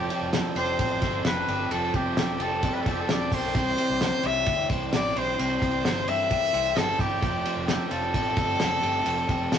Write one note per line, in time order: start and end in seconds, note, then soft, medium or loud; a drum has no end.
0.00 0.10 F3 medium
0.00 1.71 F3 medium
0.00 0.10 F4 medium
0.00 0.27 G4 medium
0.00 0.11 A4 medium
0.00 0.33 C5 medium
0.00 0.27 G6 medium
0.10 0.55 G3 medium
0.10 0.79 C4 medium
0.10 0.56 C4 medium
0.10 0.56 F4 medium
0.10 0.57 A4 medium
0.10 ride medium
0.21 0.41 F1 medium
0.33 1.02 A4 medium
0.33 snare loud
0.33 ride medium
0.55 0.75 F1 loud
0.55 1.01 G3 medium
0.55 1.03 C4 medium
0.55 1.03 F4 medium
0.55 1.48 G4 medium
0.55 1.03 A4 medium
0.55 1.21 C5 loud
0.55 1.21 C7 medium
0.55 ride medium
0.79 1.04 A1 medium
0.79 1.26 C4 medium
0.79 kick medium
0.79 ride medium
1.01 1.22 G1 medium
1.01 1.24 G3 medium
1.01 1.25 C4 medium
1.01 1.26 F4 medium
1.01 2.17 A4 medium
1.01 1.27 A4 medium
1.01 kick loud
1.01 snare soft
1.01 ride medium
1.25 1.44 F1 medium
1.25 1.47 G3 medium
1.25 1.94 C4 medium
1.25 1.49 C4 medium
1.25 1.49 F4 medium
1.25 1.50 A4 medium
1.25 1.73 B4 loud
1.25 1.68 B6 medium
1.25 snare loud
1.25 ride medium
1.48 1.67 G1 loud
1.48 1.71 G3 medium
1.48 1.72 C4 medium
1.48 1.72 F4 medium
1.48 2.40 G4 medium
1.48 1.73 A4 medium
1.48 ride soft
1.71 1.91 F1 loud
1.71 1.94 F3 medium
1.71 3.55 F3 medium
1.71 1.93 G3 medium
1.71 1.95 C4 medium
1.71 1.95 F4 medium
1.71 1.97 A4 medium
1.71 1.95 A4 medium
1.71 1.95 A6 medium
1.71 ride medium
1.94 2.14 F1 loud
1.94 2.39 G3 medium
1.94 2.63 C4 medium
1.94 2.41 C4 medium
1.94 2.41 F4 medium
1.94 2.43 G4 medium
1.94 2.42 A4 medium
1.94 2.41 G6 medium
1.94 kick medium
1.94 ride medium
2.17 2.36 E1 loud
2.17 2.85 A4 medium
2.17 snare loud
2.17 ride medium
2.40 2.69 F1 loud
2.40 2.85 G3 medium
2.40 2.86 C4 medium
2.40 2.86 F4 medium
2.40 3.31 G4 medium
2.40 2.75 A4 loud
2.40 2.87 A4 medium
2.40 2.73 A6 medium
2.40 ride medium
2.63 3.09 C4 medium
2.63 kick loud
2.63 ride medium
2.73 2.83 B4 medium
2.73 2.82 B6 medium
2.81 2.93 A4 medium
2.81 2.91 A6 medium
2.86 3.06 F1 medium
2.86 3.08 G3 medium
2.86 3.09 C4 medium
2.86 3.10 F4 medium
2.86 3.59 A4 medium
2.86 3.10 A4 medium
2.86 kick loud
2.86 ride medium
2.91 3.02 G4 medium
2.91 3.00 G6 medium
3.00 3.13 A4 medium
3.00 3.09 A6 medium
3.09 3.32 E1 loud
3.09 3.31 G3 medium
3.09 3.77 C4 medium
3.09 3.32 C4 medium
3.09 3.33 F4 medium
3.09 3.34 A4 medium
3.09 3.35 D5 medium
3.09 3.33 D7 medium
3.09 snare loud
3.09 ride medium
3.32 3.51 B1 loud
3.32 3.55 G3 medium
3.32 3.56 C4 medium
3.32 3.56 F4 medium
3.32 4.23 G4 medium
3.32 3.57 A4 medium
3.32 3.56 C5 medium
3.32 3.55 C7 medium
3.32 kick medium
3.32 open hi-hat medium
3.32 ride medium
3.55 3.75 C2 medium
3.55 5.37 C3 medium
3.55 3.78 C3 medium
3.55 3.77 E3 medium
3.55 3.78 G3 medium
3.55 3.79 C4 medium
3.55 3.79 G4 medium
3.55 4.27 C5 loud
3.55 4.20 C7 medium
3.55 kick loud
3.55 hi-hat pedal medium
3.55 ride medium
3.78 4.23 E3 medium
3.78 4.25 G3 medium
3.78 4.46 C4 medium
3.78 4.26 C4 medium
3.78 4.27 G4 medium
3.78 ride medium
3.89 4.09 C2 medium
4.01 4.70 C5 medium
4.01 snare loud
4.01 ride medium
4.23 4.43 C2 loud
4.23 4.69 E3 medium
4.23 4.71 G3 medium
4.23 4.72 C4 medium
4.23 5.15 E4 medium
4.23 4.72 G4 medium
4.23 4.67 E5 loud
4.23 4.66 E7 medium
4.23 ride medium
4.46 4.66 D2 medium
4.46 4.93 C4 medium
4.46 kick medium
4.46 ride medium
4.70 4.89 C2 loud
4.70 4.91 E3 medium
4.70 4.93 G3 medium
4.70 4.94 C4 medium
4.70 4.94 G4 medium
4.70 5.84 C5 medium
4.70 kick medium
4.70 ride medium
4.93 5.12 A1 medium
4.93 5.14 E3 medium
4.93 5.15 G3 medium
4.93 5.62 C4 medium
4.93 5.16 C4 medium
4.93 5.17 G4 medium
4.93 5.19 D5 loud
4.93 5.14 D7 medium
4.93 snare loud
4.93 ride medium
5.15 5.35 B1 loud
5.15 5.37 E3 medium
5.15 5.37 G3 medium
5.15 5.38 C4 medium
5.15 6.07 E4 medium
5.15 5.39 G4 medium
5.15 5.39 C5 loud
5.15 5.38 C7 medium
5.15 ride medium
5.37 5.59 C2 loud
5.37 5.61 C3 medium
5.37 7.22 C3 medium
5.37 5.59 E3 medium
5.37 5.60 G3 medium
5.37 5.61 C4 medium
5.37 5.62 G4 medium
5.37 6.10 C5 loud
5.37 6.04 C7 medium
5.37 ride medium
5.60 5.81 C2 loud
5.60 6.05 E3 medium
5.60 6.07 G3 medium
5.60 6.08 C4 medium
5.60 6.31 C4 medium
5.60 6.09 G4 medium
5.60 kick medium
5.60 ride medium
5.85 6.04 G1 loud
5.85 6.53 C5 medium
5.85 snare loud
5.85 ride medium
6.06 6.37 G2 medium
6.06 6.51 E3 medium
6.06 6.53 G3 medium
6.06 6.53 C4 medium
6.06 6.99 E4 medium
6.06 6.54 G4 medium
6.06 6.79 E5 loud
6.06 6.77 E7 medium
6.06 ride medium
6.31 6.77 C4 medium
6.31 kick medium
6.31 ride medium
6.52 6.73 C2 loud
6.52 6.73 E3 medium
6.52 6.74 G3 medium
6.52 6.75 C4 medium
6.52 6.76 G4 medium
6.52 7.68 C5 medium
6.52 ride medium
6.74 6.96 G1 medium
6.74 6.96 E3 medium
6.74 6.97 G3 medium
6.74 6.98 C4 medium
6.74 7.45 C4 medium
6.74 6.99 G4 medium
6.74 7.02 A4 loud
6.74 6.99 A6 medium
6.74 snare loud
6.74 ride medium
6.98 7.19 G1 loud
6.98 7.20 E3 medium
6.98 7.21 G3 medium
6.98 7.20 C4 medium
6.98 7.27 E4 medium
6.98 7.67 G4 medium
6.98 7.21 G4 medium
6.98 7.67 G6 medium
6.98 kick medium
6.98 ride medium
7.20 7.42 F1 loud
7.20 7.42 F3 medium
7.20 9.04 F3 medium
7.20 7.44 A3 medium
7.20 7.44 C4 medium
7.20 7.45 G4 medium
7.20 kick loud
7.20 ride medium
7.44 7.88 F3 medium
7.44 7.89 A3 medium
7.44 8.14 C4 medium
7.44 7.90 C4 medium
7.44 7.92 G4 medium
7.44 ride medium
7.57 7.76 F1 medium
7.67 7.89 G4 medium
7.67 8.35 A4 medium
7.67 7.89 G6 medium
7.67 snare loud
7.67 ride medium
7.89 8.11 F1 loud
7.89 8.34 F3 medium
7.89 8.35 A3 medium
7.89 8.37 C4 medium
7.89 8.03 F4 medium
7.89 8.38 G4 medium
7.89 9.59 A4 loud
7.89 9.59 A6 medium
7.89 ride medium
8.03 8.81 G4 medium
8.14 8.38 A1 medium
8.14 8.59 C4 medium
8.14 kick medium
8.14 ride medium
8.35 8.56 G1 medium
8.35 8.57 F3 medium
8.35 8.58 A3 medium
8.35 8.59 C4 medium
8.35 8.60 G4 medium
8.35 9.50 A4 medium
8.35 kick loud
8.35 ride medium
8.58 8.80 F1 medium
8.58 8.80 F3 medium
8.58 8.81 A3 medium
8.58 9.28 C4 medium
8.58 8.82 C4 medium
8.58 8.83 G4 medium
8.58 snare loud
8.58 ride medium
8.81 9.03 G1 loud
8.81 9.02 F3 medium
8.81 9.04 A3 medium
8.81 9.04 C4 medium
8.81 9.59 G4 medium
8.81 9.05 G4 medium
8.81 ride medium
9.04 9.26 F1 medium
9.04 9.26 F3 medium
9.04 9.59 F3 medium
9.04 9.27 A3 medium
9.04 9.28 C4 medium
9.04 9.29 G4 loud
9.04 ride medium
9.27 9.48 F1 loud
9.27 9.59 F3 medium
9.27 9.59 A3 medium
9.27 9.59 C4 medium
9.27 9.59 G4 medium
9.27 kick medium
9.27 ride medium
9.52 9.59 E1 medium
9.52 9.59 A4 medium
9.52 snare loud
9.52 ride medium